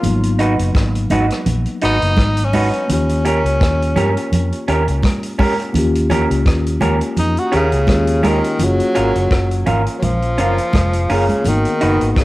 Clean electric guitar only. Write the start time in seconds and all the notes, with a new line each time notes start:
0.39 D#4 F#4 B4
1.11 D#4 F#4 B4
1.82 D#4 F#4 B4
2.53 D#4 F#4 B4
3.25 C#4 G4 A#4
3.96 C#4 G4 A#4
4.68 C#4 G4 A#4
5.39 C#4 G4 A#4
6.10 C#4 G4 A#4
6.81 C#4 G4 A#4
7.52 C#4 G4 A#4
8.23 C#4 G4 A#4
8.95 C#4 F4 A#4
9.66 C#4 F4 A#4
10.38 C#4 F4 A#4
11.10 C#4 F4 A#4
11.81 D#4 F#4 B4